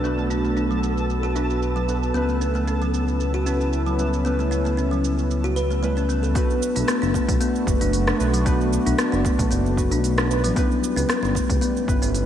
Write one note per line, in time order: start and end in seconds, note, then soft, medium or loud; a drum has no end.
0.00 2.12 B1 medium
0.00 0.02 A3 medium
0.00 2.14 A3 medium
0.00 1.32 A3 medium
0.00 0.03 B3 medium
0.00 12.26 B3 medium
0.00 1.32 B3 medium
0.00 0.17 B3 medium
0.00 0.04 D4 medium
0.00 2.15 D4 medium
0.00 1.33 D4 medium
0.00 0.05 F#4 medium
0.00 3.00 F#4 medium
0.00 6.37 A4 medium
0.00 0.06 B4 medium
0.00 12.26 B4 medium
0.04 1.33 F#4 medium
0.04 1.34 B4 medium
0.04 shaker soft
0.18 0.30 A3 medium
0.18 shaker soft
0.30 0.38 D4 medium
0.30 shaker medium
0.45 0.56 A3 medium
0.45 shaker soft
0.57 0.65 D4 medium
0.57 shaker soft
0.71 1.22 F#3 medium
0.71 shaker soft
0.83 shaker medium
0.98 shaker soft
1.10 shaker soft
1.23 1.34 F#4 medium
1.23 shaker soft
1.35 1.85 A3 medium
1.35 1.85 B3 medium
1.35 1.44 D4 medium
1.35 1.85 D4 medium
1.35 1.86 F#4 medium
1.35 1.86 B4 medium
1.35 shaker medium
1.50 shaker soft
1.62 shaker soft
1.76 2.13 F#3 medium
1.76 shaker soft
1.88 2.11 A3 medium
1.88 2.12 B3 medium
1.88 2.12 D4 medium
1.88 2.12 F#4 medium
1.88 2.12 B4 medium
1.88 shaker medium
2.03 shaker soft
2.14 6.33 C#2 medium
2.14 3.43 B3 medium
2.14 2.28 B3 medium
2.14 3.43 C#4 medium
2.14 3.44 E4 medium
2.14 3.44 B4 medium
2.14 shaker soft
2.29 2.40 A3 medium
2.29 shaker soft
2.34 6.36 C#4 medium
2.41 2.49 C#4 medium
2.41 shaker medium
2.55 2.67 A3 medium
2.55 shaker soft
2.68 2.75 C#4 medium
2.68 shaker soft
2.82 3.33 F#3 medium
2.82 7.60 E4 medium
2.82 shaker soft
2.94 shaker medium
3.08 shaker soft
3.20 shaker soft
3.34 3.45 F#4 medium
3.34 shaker soft
3.46 3.96 B3 medium
3.46 3.96 C#4 medium
3.46 3.54 C#4 medium
3.46 3.96 E4 medium
3.46 3.96 B4 medium
3.46 shaker medium
3.61 shaker soft
3.73 shaker soft
3.86 4.24 F#3 medium
3.86 shaker soft
3.98 4.22 G3 medium
3.98 4.22 B3 medium
3.98 4.22 C#4 medium
3.98 4.22 E4 medium
3.98 4.23 B4 medium
3.98 shaker medium
4.13 shaker soft
4.24 5.53 B3 medium
4.24 4.38 B3 medium
4.24 5.54 C#4 medium
4.24 5.54 E4 medium
4.24 5.55 B4 medium
4.24 shaker soft
4.39 4.51 A3 medium
4.39 shaker soft
4.51 4.59 C#4 medium
4.51 shaker medium
4.65 4.77 A3 medium
4.65 shaker soft
4.77 4.86 C#4 medium
4.77 shaker soft
4.91 5.43 F#3 medium
4.91 shaker soft
5.04 shaker medium
5.19 shaker soft
5.31 shaker soft
5.44 5.55 F#4 medium
5.44 shaker soft
5.56 5.69 B4 medium
5.56 shaker medium
5.71 5.78 A3 medium
5.71 shaker soft
5.82 6.32 G3 medium
5.82 5.96 A3 medium
5.82 6.32 B3 medium
5.82 6.33 C#4 medium
5.82 6.33 E4 medium
5.82 6.33 B4 medium
5.82 shaker soft
5.97 6.08 C#4 medium
5.97 shaker soft
6.09 6.23 B3 medium
6.09 shaker medium
6.23 6.34 A4 medium
6.23 shaker soft
6.33 7.63 A3 medium
6.33 10.57 A3 medium
6.33 7.64 B3 medium
6.33 6.74 B3 medium
6.33 7.64 D4 medium
6.33 7.65 F#4 medium
6.33 kick loud
6.33 open hi-hat soft
6.33 shaker soft
6.37 7.65 B4 loud
6.50 shaker soft
6.62 shaker medium
6.76 6.83 B1 medium
6.76 6.87 D4 medium
6.76 open hi-hat medium
6.76 shaker soft
6.88 7.01 B3 medium
6.88 12.26 F#4 medium
6.88 cross-stick medium
6.88 open hi-hat soft
6.88 shaker soft
7.02 7.18 F#1 medium
7.02 7.14 D4 medium
7.02 shaker soft
7.13 7.28 A3 medium
7.13 10.56 D4 medium
7.13 kick medium
7.13 shaker medium
7.29 7.36 B1 medium
7.29 kick loud
7.29 open hi-hat medium
7.29 shaker soft
7.41 7.80 B3 medium
7.41 open hi-hat soft
7.41 shaker soft
7.55 shaker soft
7.66 7.76 F#1 medium
7.66 8.16 A3 medium
7.66 8.16 B3 medium
7.66 8.17 D4 medium
7.66 8.17 F#4 medium
7.66 8.17 B4 medium
7.66 kick loud
7.66 shaker medium
7.81 8.12 F#1 loud
7.81 8.06 D4 medium
7.81 open hi-hat medium
7.81 shaker soft
7.93 open hi-hat soft
7.93 shaker soft
8.07 8.19 D4 medium
8.07 cross-stick medium
8.07 shaker soft
8.18 8.78 B1 medium
8.18 8.42 A3 medium
8.18 8.43 B3 medium
8.18 8.43 D4 medium
8.18 8.43 F#4 medium
8.18 8.43 B4 medium
8.18 shaker medium
8.34 8.45 F#3 medium
8.34 open hi-hat medium
8.34 shaker soft
8.44 9.74 A3 medium
8.44 9.74 B3 medium
8.44 8.85 B3 medium
8.44 9.75 D4 medium
8.44 9.75 F#4 medium
8.44 kick loud
8.44 open hi-hat soft
8.44 shaker soft
8.48 9.76 B4 loud
8.61 shaker soft
8.73 shaker medium
8.86 8.94 B1 loud
8.86 8.97 D4 medium
8.86 open hi-hat soft
8.86 shaker soft
8.98 9.12 B3 medium
8.98 cross-stick medium
8.98 open hi-hat soft
8.98 shaker soft
9.12 9.28 F#1 medium
9.12 9.24 D4 medium
9.12 shaker soft
9.25 9.38 A3 medium
9.25 kick loud
9.25 shaker medium
9.39 9.46 B1 medium
9.39 kick loud
9.39 open hi-hat medium
9.39 shaker soft
9.51 9.93 F#1 medium
9.51 9.90 B3 medium
9.51 open hi-hat soft
9.51 shaker soft
9.66 shaker soft
9.77 10.27 A3 medium
9.77 10.27 B3 medium
9.77 10.27 D4 medium
9.77 10.28 F#4 medium
9.77 10.28 B4 medium
9.77 kick medium
9.77 shaker medium
9.91 10.46 B1 medium
9.91 10.16 D4 medium
9.91 open hi-hat medium
9.91 shaker soft
10.04 open hi-hat soft
10.04 shaker soft
10.18 10.30 D4 medium
10.18 cross-stick medium
10.18 shaker soft
10.29 10.53 A3 medium
10.29 10.53 B3 medium
10.29 10.54 D4 medium
10.29 10.54 F#4 medium
10.29 10.54 B4 medium
10.29 shaker medium
10.44 10.52 A1 loud
10.44 10.56 F#3 medium
10.44 open hi-hat medium
10.44 shaker soft
10.55 11.84 G3 medium
10.55 12.26 G3 medium
10.55 11.85 B3 medium
10.55 10.96 B3 medium
10.55 11.85 C#4 medium
10.55 11.86 E4 medium
10.55 11.86 B4 loud
10.55 kick loud
10.55 open hi-hat soft
10.55 shaker soft
10.72 shaker soft
10.84 shaker medium
10.96 11.04 C#2 medium
10.96 11.08 C#4 medium
10.96 open hi-hat soft
10.96 shaker soft
11.09 11.22 B3 medium
11.09 cross-stick medium
11.09 open hi-hat soft
11.09 shaker soft
11.23 11.38 G1 medium
11.23 11.35 C#4 medium
11.23 shaker soft
11.35 11.49 A3 medium
11.35 kick medium
11.35 shaker medium
11.42 12.26 C#4 medium
11.50 11.57 C#2 medium
11.50 kick loud
11.50 open hi-hat medium
11.50 shaker soft
11.61 12.01 B3 medium
11.61 open hi-hat soft
11.61 shaker soft
11.77 12.26 E4 medium
11.77 shaker soft
11.87 11.97 G1 medium
11.87 12.26 G3 medium
11.87 12.26 B3 medium
11.87 12.26 C#4 medium
11.87 12.26 E4 medium
11.87 12.26 B4 medium
11.87 kick loud
11.87 shaker medium
12.02 12.26 G1 loud
12.02 12.26 C#4 medium
12.02 open hi-hat medium
12.02 shaker soft
12.15 open hi-hat soft
12.15 shaker soft